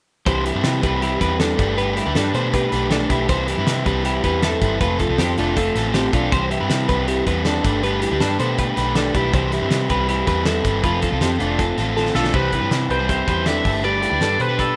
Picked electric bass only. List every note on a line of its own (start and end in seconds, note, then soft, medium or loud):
0.26 0.51 C2 medium
0.55 0.63 G2 medium
0.65 0.81 C3 medium
0.83 1.16 C2 medium
1.21 1.53 E2 medium
1.59 1.99 G1 medium
2.07 2.14 D2 medium
2.16 2.32 G2 medium
2.34 2.67 B2 medium
2.72 3.05 B1 medium
3.10 3.26 B1 medium
3.29 3.53 C2 loud
3.58 3.66 G2 medium
3.67 3.83 C3 medium
3.86 4.18 C2 medium
4.24 4.56 E2 medium
4.62 4.78 G1 medium
4.81 5.05 F1 medium
5.09 5.17 C2 medium
5.18 5.35 F2 medium
5.38 5.70 F1 medium
5.75 6.08 A1 medium
6.13 6.30 B1 medium
6.32 6.56 C2 loud
6.61 6.69 G2 medium
6.71 6.87 C3 medium
6.89 7.21 C2 medium
7.27 7.59 E2 medium
7.64 8.05 G1 medium
8.12 8.20 D2 medium
8.21 8.37 G2 medium
8.40 8.72 B2 medium
8.77 9.09 B1 medium
9.14 9.31 B1 medium
9.34 9.58 C2 loud
9.62 9.70 G2 medium
9.71 9.87 C3 medium
9.90 10.22 C2 medium
10.28 10.60 E2 medium
10.65 10.81 G1 medium
10.84 11.08 F1 medium
11.12 11.20 C2 medium
11.21 11.37 F2 medium
11.40 11.72 F1 medium
11.77 12.09 A1 medium
12.15 12.31 B1 medium
12.34 12.58 C2 medium
12.62 12.70 G2 medium
12.71 12.87 C3 medium
12.89 13.22 C2 medium
13.28 13.60 E2 medium
13.65 14.05 G1 medium
14.12 14.20 D2 medium
14.21 14.37 G2 medium
14.40 14.72 B2 medium